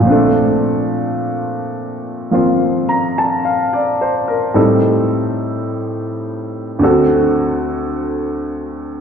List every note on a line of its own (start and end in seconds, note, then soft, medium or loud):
0.00 4.54 A#2 soft
0.00 2.30 F3 soft
0.06 2.32 C4 soft
0.06 4.59 D4 soft
0.12 4.60 A3 soft
2.31 4.57 F3 soft
2.31 4.57 A#3 soft
2.31 4.53 C4 soft
2.31 4.58 F4 soft
2.89 3.23 A#5 soft
3.18 3.57 A5 soft
3.45 3.97 F5 soft
3.73 4.21 D5 soft
4.01 4.36 C5 soft
4.28 4.68 A#4 soft
4.54 6.80 A2 soft
4.54 6.80 G3 soft
4.54 6.80 C4 soft
4.54 6.81 D#4 soft
4.54 6.81 A4 soft
6.79 9.01 D2 soft
6.79 9.01 D3 soft
6.79 9.01 C4 soft
6.83 9.01 F#4 soft
6.83 9.01 A4 soft